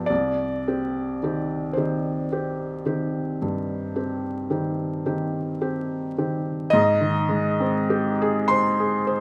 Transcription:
0.00 0.13 G2 soft
0.00 0.12 F3 soft
0.00 0.13 B3 soft
0.00 0.13 G4 soft
0.00 0.06 D5 medium
0.06 0.65 C2 medium
0.06 1.74 D5 medium
0.68 1.18 C4 soft
0.68 1.19 G4 soft
1.23 1.72 D#3 soft
1.23 1.73 C4 soft
1.23 1.73 G4 soft
1.73 2.27 D#3 soft
1.73 5.04 C5 soft
1.77 2.27 C4 soft
1.77 2.27 G4 soft
2.32 2.82 C4 soft
2.32 2.82 G4 soft
2.86 3.37 D#3 soft
2.86 3.37 C4 soft
2.86 3.37 G4 soft
3.42 3.95 G2 soft
3.96 4.47 C4 soft
3.96 4.47 G4 soft
4.50 5.01 D#3 soft
4.50 5.02 C4 soft
4.50 5.02 G4 soft
5.06 5.57 D#3 soft
5.06 5.57 C4 soft
5.06 5.58 G4 soft
5.61 6.13 C4 soft
5.61 6.13 G4 soft
6.18 6.69 D#3 soft
6.18 6.69 C4 soft
6.18 6.69 G4 soft
6.70 9.20 G#2 medium
6.70 8.49 D#5 loud
7.01 7.48 D#3 medium
7.29 7.78 G#3 medium
7.60 8.09 C4 medium
7.90 8.39 G4 medium
8.22 8.68 G#4 medium
8.48 8.95 C5 medium
8.48 9.20 C6 loud
8.80 9.20 G#4 medium
9.07 9.20 C5 medium

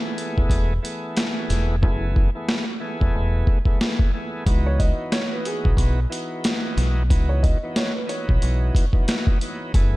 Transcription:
0.00 0.73 E3 medium
0.00 0.73 A3 medium
0.00 0.74 B3 medium
0.00 0.74 G#4 loud
0.18 closed hi-hat medium
0.38 0.49 E1 medium
0.38 kick medium
0.50 0.77 E1 loud
0.50 kick medium
0.50 closed hi-hat loud
0.83 1.76 E3 medium
0.83 1.76 A3 medium
0.83 1.76 B3 medium
0.83 1.76 G#4 loud
0.83 closed hi-hat medium
1.17 snare loud
1.17 closed hi-hat medium
1.50 1.83 E1 medium
1.50 snare soft
1.50 closed hi-hat medium
1.82 2.26 F#1 loud
1.82 2.30 E3 medium
1.82 2.30 A3 medium
1.82 2.31 B3 medium
1.82 2.31 G#4 loud
1.82 kick loud
2.16 kick loud
2.35 2.65 E3 medium
2.35 2.65 A3 medium
2.35 2.65 B3 medium
2.35 2.66 G#4 loud
2.49 snare loud
2.80 3.58 E3 medium
2.80 3.59 A3 medium
2.80 3.59 B3 medium
2.80 3.59 G#4 loud
3.01 3.13 E1 medium
3.01 kick medium
3.15 3.42 E1 medium
3.47 kick loud
3.65 3.79 E3 medium
3.65 3.80 A3 medium
3.65 3.80 B3 medium
3.65 3.81 G#4 loud
3.65 kick medium
3.80 4.11 E3 medium
3.80 4.12 A3 medium
3.80 4.12 B3 medium
3.80 4.12 G#4 medium
3.80 snare loud
3.99 kick loud
4.13 4.44 E3 medium
4.13 4.44 A3 medium
4.13 4.45 B3 medium
4.13 4.45 G#4 medium
4.45 4.90 C#2 loud
4.45 6.00 E3 medium
4.45 6.00 B3 medium
4.45 6.00 D#4 medium
4.45 6.00 F#4 medium
4.45 kick loud
4.45 closed hi-hat loud
4.66 4.78 C#5 medium
4.79 5.09 D#5 medium
4.79 kick loud
4.79 closed hi-hat medium
5.12 5.30 C#5 medium
5.12 snare loud
5.12 closed hi-hat medium
5.32 5.44 B4 medium
5.45 5.95 G#4 medium
5.45 closed hi-hat medium
5.65 5.76 B1 medium
5.65 kick medium
5.77 6.05 B1 loud
5.77 kick medium
5.77 closed hi-hat medium
6.10 7.03 E3 medium
6.10 7.03 B3 medium
6.10 7.03 D#4 medium
6.10 7.04 F#4 loud
6.10 closed hi-hat medium
6.44 snare loud
6.44 closed hi-hat medium
6.77 7.11 B1 loud
6.77 snare soft
6.77 closed hi-hat medium
7.10 7.54 C#2 loud
7.10 7.58 E3 medium
7.10 7.58 B3 medium
7.10 7.58 D#4 medium
7.10 7.58 F#4 loud
7.10 kick loud
7.10 closed hi-hat loud
7.29 7.42 C#5 medium
7.43 7.73 D#5 medium
7.43 kick loud
7.43 closed hi-hat medium
7.63 7.93 E3 medium
7.63 7.93 B3 medium
7.63 7.93 D#4 medium
7.63 7.94 F#4 loud
7.76 7.94 C#5 medium
7.76 snare loud
7.76 closed hi-hat medium
7.95 8.08 B4 medium
8.07 8.85 E3 medium
8.07 8.86 B3 medium
8.07 8.86 D#4 medium
8.07 8.86 F#4 loud
8.07 9.70 C#5 medium
8.07 closed hi-hat medium
8.29 8.40 B1 medium
8.29 kick medium
8.42 8.69 B1 loud
8.42 closed hi-hat medium
8.75 kick loud
8.75 closed hi-hat medium
8.93 9.05 E3 medium
8.93 9.06 B3 medium
8.93 9.06 D#4 medium
8.93 9.07 F#4 loud
8.93 kick medium
9.07 9.38 E3 medium
9.07 9.38 B3 medium
9.07 9.39 D#4 medium
9.07 9.39 F#4 medium
9.07 snare loud
9.07 closed hi-hat medium
9.27 kick loud
9.41 9.72 E3 medium
9.41 9.72 B3 medium
9.41 9.73 D#4 medium
9.41 9.73 F#4 medium
9.41 closed hi-hat medium
9.74 9.97 F#1 loud
9.74 9.97 E3 medium
9.74 9.97 A3 medium
9.74 9.97 B3 medium
9.74 9.97 G#4 loud
9.74 kick loud
9.74 closed hi-hat loud

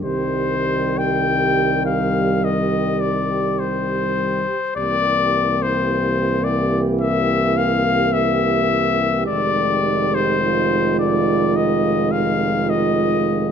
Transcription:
0.02 4.50 C2 medium
0.02 4.46 D#3 soft
0.02 4.45 G3 soft
0.02 4.59 G4 soft
0.02 1.00 C5 medium
0.98 1.85 G5 medium
1.85 2.46 F5 medium
2.44 3.02 D#5 medium
3.01 3.61 D5 medium
3.60 4.75 C5 medium
4.76 9.24 C2 medium
4.76 9.24 E3 soft
4.76 9.24 A#3 soft
4.76 10.38 G4 soft
4.76 5.64 D5 medium
5.62 6.45 C5 medium
6.44 6.81 D5 medium
7.01 7.59 E5 medium
7.57 8.14 F5 medium
8.13 9.26 E5 medium
9.26 13.52 F1 medium
9.26 13.52 D#3 medium
9.26 13.52 G#3 soft
9.26 10.16 D5 medium
10.15 10.99 C5 medium
10.41 13.52 F4 medium
10.99 11.58 D5 medium
11.56 12.13 D#5 medium
12.12 12.71 F5 medium
12.70 13.52 D#5 medium

